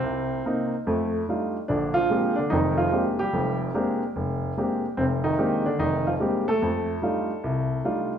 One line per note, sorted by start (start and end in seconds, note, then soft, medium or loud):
0.00 0.39 C2 medium
0.00 0.69 C3 medium
0.00 0.44 C4 medium
0.46 0.73 A#3 medium
0.46 0.74 C4 soft
0.46 0.74 D#4 medium
0.87 1.22 F2 medium
0.87 1.22 A3 medium
1.29 1.56 G3 soft
1.29 1.56 A3 soft
1.29 1.56 D4 soft
1.29 1.56 D#4 soft
1.29 1.56 F4 medium
1.68 2.04 A#1 medium
1.68 1.94 D3 medium
1.68 1.93 D4 medium
1.94 2.34 F3 medium
1.94 2.37 F4 loud
2.10 2.38 G#3 medium
2.10 2.38 A#3 soft
2.10 2.38 C4 soft
2.10 2.34 D4 soft
2.10 2.38 G4 medium
2.36 2.51 D3 medium
2.36 2.51 D4 medium
2.50 2.87 F1 medium
2.50 2.86 F2 medium
2.50 2.77 D#3 medium
2.50 2.78 D#4 medium
2.77 3.04 F3 medium
2.77 3.03 F4 medium
2.92 3.20 G#3 medium
2.92 3.20 A#3 soft
2.92 3.20 C4 soft
2.92 3.20 D4 soft
2.92 3.18 G4 medium
3.19 3.58 G3 medium
3.19 3.57 G4 medium
3.33 3.68 F1 medium
3.33 3.68 F2 medium
3.74 4.02 G#3 medium
3.74 4.02 A#3 medium
3.74 4.02 C4 soft
3.74 4.02 D4 medium
3.74 4.02 G4 medium
4.16 4.51 F1 medium
4.57 4.84 G#3 soft
4.57 4.84 A#3 soft
4.57 4.85 C4 soft
4.57 4.85 D4 soft
4.57 4.85 G4 medium
4.97 5.33 F1 medium
4.97 5.04 C3 medium
4.97 5.03 C4 medium
5.24 5.62 D#3 medium
5.24 5.62 D#4 medium
5.38 5.66 G#3 medium
5.38 5.66 A#3 medium
5.38 5.66 C4 medium
5.38 5.64 D4 medium
5.38 5.66 G4 medium
5.66 5.79 D3 medium
5.66 5.80 D4 medium
5.79 6.14 F1 medium
5.79 6.04 D#3 medium
5.79 6.06 D#4 medium
6.07 6.12 F3 medium
6.07 6.12 F4 medium
6.20 6.45 G3 medium
6.20 6.48 G#3 medium
6.20 6.48 A#3 soft
6.20 6.48 C4 soft
6.20 6.48 D4 soft
6.20 6.48 G4 medium
6.48 6.61 A3 medium
6.48 8.07 A4 medium
6.62 6.97 F2 medium
6.62 6.97 A3 medium
7.02 7.30 G3 medium
7.02 7.30 A3 soft
7.02 7.30 D4 soft
7.02 7.30 D#4 soft
7.02 7.30 F4 medium
7.44 7.79 C2 medium
7.84 8.12 G3 soft
7.84 8.12 A3 soft
7.84 8.12 D4 soft
7.84 8.12 D#4 soft
7.84 8.13 F4 medium